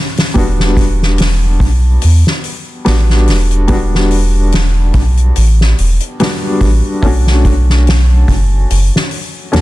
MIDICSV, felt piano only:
0, 0, Header, 1, 2, 480
1, 0, Start_track
1, 0, Tempo, 833333
1, 207, Time_signature, 4, 2, 24, 8
1, 5537, End_track
2, 0, Start_track
2, 0, Title_t, "Felt piano"
2, 0, Program_c, 0, 0
2, 0, Control_c, 0, 64, 127
2, 195, Note_on_c, 0, 55, 80
2, 204, Note_on_c, 0, 59, 77
2, 213, Note_on_c, 0, 62, 76
2, 215, Control_c, 0, 64, 0
2, 219, Note_on_c, 0, 66, 88
2, 329, Control_c, 0, 64, 127
2, 1616, Note_off_c, 0, 55, 0
2, 1620, Note_off_c, 0, 59, 0
2, 1625, Note_off_c, 0, 62, 0
2, 1628, Note_off_c, 0, 66, 0
2, 1640, Note_on_c, 0, 55, 79
2, 1641, Note_on_c, 0, 59, 76
2, 1649, Note_on_c, 0, 62, 78
2, 1653, Note_on_c, 0, 66, 87
2, 2098, Note_off_c, 0, 55, 0
2, 2099, Note_off_c, 0, 59, 0
2, 2103, Note_off_c, 0, 62, 0
2, 2105, Note_off_c, 0, 66, 0
2, 2117, Note_on_c, 0, 55, 77
2, 2124, Note_on_c, 0, 59, 73
2, 2133, Note_on_c, 0, 62, 79
2, 2141, Note_on_c, 0, 66, 93
2, 3536, Note_off_c, 0, 55, 0
2, 3540, Note_off_c, 0, 59, 0
2, 3544, Note_off_c, 0, 62, 0
2, 3549, Note_off_c, 0, 66, 0
2, 3570, Note_on_c, 0, 55, 84
2, 3570, Note_on_c, 0, 59, 73
2, 3577, Note_on_c, 0, 62, 77
2, 3580, Note_on_c, 0, 66, 89
2, 4023, Note_off_c, 0, 55, 0
2, 4023, Note_off_c, 0, 59, 0
2, 4026, Note_off_c, 0, 62, 0
2, 4028, Note_off_c, 0, 66, 0
2, 4042, Note_on_c, 0, 57, 80
2, 4050, Note_on_c, 0, 61, 78
2, 4055, Control_c, 0, 64, 0
2, 4057, Note_on_c, 0, 62, 77
2, 4066, Note_on_c, 0, 66, 90
2, 4163, Control_c, 0, 64, 127
2, 5459, Note_off_c, 0, 57, 0
2, 5463, Note_off_c, 0, 61, 0
2, 5467, Note_off_c, 0, 62, 0
2, 5471, Note_off_c, 0, 66, 0
2, 5482, Note_on_c, 0, 57, 82
2, 5486, Note_on_c, 0, 61, 80
2, 5489, Note_on_c, 0, 62, 76
2, 5496, Note_on_c, 0, 66, 93
2, 5537, Note_off_c, 0, 57, 0
2, 5537, Note_off_c, 0, 61, 0
2, 5537, Note_off_c, 0, 62, 0
2, 5537, Note_off_c, 0, 66, 0
2, 5537, End_track
0, 0, End_of_file